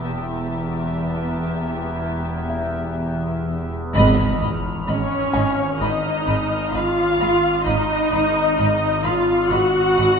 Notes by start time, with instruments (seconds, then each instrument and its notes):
Already playing: violin section G5 A5 A#5
0.05 double bass section E1, synth drone E2, cello section E2, viola section B3, violin section G4 E5
2.50 felt piano E5
3.94 double bass section G#1, synth drone G#1, cello section G#2, timpani G#2, violin section D#5 B5 F6, impact
4.41 double bass section G#1, cello section G#2, violin section D#5 B5
4.88 double bass section G#1, cello section G#2, viola section C#4, violin section C#5 D#5 B5
5.33 double bass section G#1, cello section G#2, violin section D#5 B5, felt piano G#5
5.81 double bass section G#1, cello section G#2, viola section D#4, violin section D#5 B5
6.27 double bass section G#1, cello section G#2, violin section D#5 B5
6.73 double bass section G#1, cello section G#2, viola section F4, violin section D#5 F5 B5
7.20 double bass section G#1, cello section G#2, violin section D#5 B5
7.66 synth drone G#1, double bass section G#1, cello section G#2, viola section D#4, violin section D#5 B5
8.12 double bass section G#1, cello section G#2, violin section D#5 B5
8.58 double bass section G#1, cello section G#2, violin section D#5 B5
9.03 double bass section G#1, cello section G#2, viola section F4, violin section D#5 F5 B5
9.50 double bass section G#1, cello section G#2, viola section F#4, violin section D#5 F#5 B5
9.97 double bass section G#1, cello section G#2, violin section D#5 B5